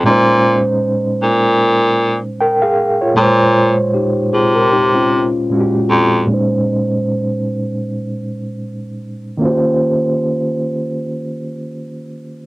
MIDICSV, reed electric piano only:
0, 0, Header, 1, 2, 480
1, 0, Start_track
1, 0, Tempo, 779221
1, 33, Time_signature, 4, 2, 24, 8
1, 7677, End_track
2, 0, Start_track
2, 0, Title_t, "Reed electric piano"
2, 0, Program_c, 0, 4
2, 0, Control_c, 0, 64, 127
2, 18, Note_on_c, 0, 46, 71
2, 30, Note_on_c, 0, 56, 72
2, 40, Control_c, 0, 64, 0
2, 41, Note_on_c, 0, 61, 73
2, 52, Note_on_c, 0, 63, 66
2, 64, Note_on_c, 0, 72, 84
2, 156, Control_c, 0, 64, 127
2, 1464, Note_off_c, 0, 72, 0
2, 1482, Note_on_c, 0, 79, 62
2, 1487, Note_on_c, 0, 70, 53
2, 1606, Note_off_c, 0, 79, 0
2, 1609, Note_off_c, 0, 70, 0
2, 1613, Note_on_c, 0, 77, 69
2, 1620, Note_on_c, 0, 68, 56
2, 1839, Note_off_c, 0, 77, 0
2, 1842, Note_off_c, 0, 68, 0
2, 1856, Note_on_c, 0, 73, 62
2, 1862, Note_on_c, 0, 65, 46
2, 1921, Note_off_c, 0, 46, 0
2, 1927, Note_off_c, 0, 56, 0
2, 1932, Note_off_c, 0, 61, 0
2, 1937, Note_on_c, 0, 46, 77
2, 1938, Note_off_c, 0, 63, 0
2, 1951, Note_on_c, 0, 56, 71
2, 1960, Note_off_c, 0, 73, 0
2, 1960, Control_c, 0, 64, 0
2, 1967, Note_on_c, 0, 73, 69
2, 1983, Note_on_c, 0, 72, 81
2, 2055, Control_c, 0, 64, 127
2, 2083, Note_off_c, 0, 65, 0
2, 3360, Note_off_c, 0, 46, 0
2, 3367, Note_off_c, 0, 56, 0
2, 3375, Note_off_c, 0, 73, 0
2, 3383, Note_off_c, 0, 72, 0
2, 3388, Note_on_c, 0, 46, 58
2, 3397, Note_on_c, 0, 56, 52
2, 3402, Note_on_c, 0, 61, 52
2, 3411, Note_on_c, 0, 66, 48
2, 3447, Note_off_c, 0, 66, 0
2, 3450, Note_on_c, 0, 67, 60
2, 3850, Note_off_c, 0, 46, 0
2, 3858, Note_on_c, 0, 46, 62
2, 3861, Note_off_c, 0, 56, 0
2, 3868, Note_on_c, 0, 56, 58
2, 3871, Note_off_c, 0, 61, 0
2, 3879, Note_on_c, 0, 61, 61
2, 3881, Control_c, 0, 64, 0
2, 3891, Note_on_c, 0, 63, 60
2, 3901, Note_off_c, 0, 67, 0
2, 3902, Note_on_c, 0, 72, 71
2, 3994, Control_c, 0, 64, 127
2, 5760, Note_off_c, 0, 46, 0
2, 5766, Note_off_c, 0, 56, 0
2, 5771, Note_off_c, 0, 61, 0
2, 5774, Note_on_c, 0, 51, 67
2, 5777, Note_off_c, 0, 63, 0
2, 5783, Note_off_c, 0, 72, 0
2, 5783, Note_on_c, 0, 58, 64
2, 5794, Note_on_c, 0, 61, 61
2, 5800, Note_on_c, 0, 65, 60
2, 5801, Control_c, 0, 64, 0
2, 5810, Note_on_c, 0, 66, 49
2, 5822, Note_on_c, 0, 72, 76
2, 5847, Note_off_c, 0, 66, 0
2, 5851, Note_on_c, 0, 67, 59
2, 5925, Control_c, 0, 64, 127
2, 7677, Note_off_c, 0, 51, 0
2, 7677, Note_off_c, 0, 58, 0
2, 7677, Note_off_c, 0, 61, 0
2, 7677, Note_off_c, 0, 65, 0
2, 7677, Note_off_c, 0, 67, 0
2, 7677, Note_off_c, 0, 72, 0
2, 7677, End_track
0, 0, End_of_file